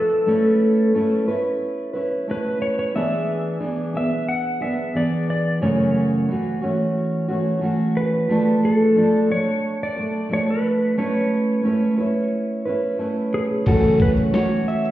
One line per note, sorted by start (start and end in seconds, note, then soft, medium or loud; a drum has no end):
0.00 0.26 F3 medium
0.00 0.27 A3 medium
0.00 0.27 D4 medium
0.00 0.29 A4 medium
0.00 1.24 A4 medium
0.27 0.94 A3 medium
0.27 0.94 C#4 medium
0.27 0.96 E4 medium
0.27 0.97 B4 medium
0.95 1.27 A3 medium
0.95 1.28 C#4 medium
0.95 1.28 E4 medium
0.95 1.26 B4 medium
1.28 1.95 C#4 soft
1.28 1.95 E4 soft
1.28 1.93 B4 medium
1.93 2.28 C#4 soft
1.93 2.28 E4 soft
1.93 2.27 B4 soft
2.28 2.94 A3 soft
2.28 2.95 C#4 soft
2.28 2.96 E4 medium
2.28 2.96 B4 medium
2.28 2.61 B4 medium
2.62 2.77 C#5 medium
2.79 2.84 C#5 medium
2.95 3.60 E3 medium
2.95 3.61 B3 medium
2.95 3.61 D4 medium
2.95 3.62 G#4 medium
2.95 3.57 E5 medium
3.60 3.94 E3 medium
3.60 3.95 B3 medium
3.60 3.94 D4 medium
3.60 3.93 G#4 medium
3.94 4.62 B3 soft
3.94 4.61 D4 soft
3.94 4.60 G#4 soft
3.94 4.28 E5 medium
4.28 4.62 F#5 medium
4.61 4.95 B3 soft
4.61 4.95 D4 soft
4.61 4.94 G#4 soft
4.61 4.96 E5 medium
4.95 5.62 E3 soft
4.95 5.62 B3 medium
4.95 5.62 D4 medium
4.95 5.63 G#4 medium
4.95 5.29 D5 medium
5.30 5.62 D5 medium
5.62 6.28 F#2 medium
5.62 6.29 C#3 medium
5.62 6.27 E3 medium
5.62 6.30 A3 medium
5.62 6.29 C#4 medium
5.62 6.29 F#4 medium
5.62 6.25 C#5 medium
6.28 6.62 E3 medium
6.28 6.63 A3 medium
6.28 6.62 C#4 medium
6.28 6.60 F#4 medium
6.62 7.30 E3 soft
6.62 7.30 A3 soft
6.62 7.29 C#4 medium
6.62 7.27 F#4 medium
7.28 7.60 E3 soft
7.28 7.61 A3 soft
7.28 7.63 C#4 soft
7.28 7.62 F#4 medium
7.61 8.29 E3 medium
7.61 8.30 A3 medium
7.61 8.30 C#4 medium
7.61 8.30 F#4 medium
7.97 8.59 B4 medium
8.29 8.95 F3 medium
8.29 8.97 A3 medium
8.29 8.97 D4 medium
8.29 8.99 A4 medium
8.65 9.33 A4 medium
8.96 9.30 F3 medium
8.96 9.30 A3 medium
8.96 9.31 D4 medium
8.96 9.29 A4 medium
9.30 9.99 A3 soft
9.30 9.97 D4 soft
9.30 9.96 A4 soft
9.30 9.83 C#5 medium
9.83 10.29 D5 loud
9.96 10.30 A3 soft
9.96 10.30 D4 soft
9.96 10.30 A4 soft
10.29 10.97 F3 medium
10.29 10.98 A3 medium
10.29 10.98 D4 medium
10.29 10.99 A4 medium
10.33 10.49 C#5 medium
10.50 11.01 B4 medium
10.98 11.63 A3 medium
10.98 11.64 C#4 medium
10.98 11.65 E4 medium
10.98 11.66 B4 medium
10.98 12.29 C#5 medium
11.63 11.98 A3 soft
11.63 11.99 C#4 medium
11.63 11.98 E4 medium
11.63 11.96 B4 medium
11.97 12.68 C#4 soft
11.97 12.67 E4 medium
11.97 12.64 B4 medium
12.65 12.98 C#4 soft
12.65 12.99 E4 soft
12.65 12.99 B4 medium
12.99 13.66 A3 medium
12.99 13.67 C#4 medium
12.99 13.67 E4 medium
12.99 13.67 B4 medium
13.34 13.43 G#4 medium
13.65 14.33 F#2 medium
13.65 14.33 C#3 medium
13.65 14.32 E3 medium
13.65 14.33 A3 medium
13.65 14.34 C#4 medium
13.65 14.36 F#4 medium
13.65 14.01 A4 medium
13.65 kick loud
13.65 crash medium
13.65 shaker medium
14.00 14.11 B4 medium
14.00 kick medium
14.00 shaker medium
14.17 shaker soft
14.33 14.91 E3 medium
14.33 14.91 A3 medium
14.33 14.91 C#4 medium
14.33 14.91 F#4 medium
14.33 14.69 C#5 medium
14.33 snare loud
14.33 shaker medium
14.68 14.91 E5 medium
14.68 shaker soft
14.85 shaker soft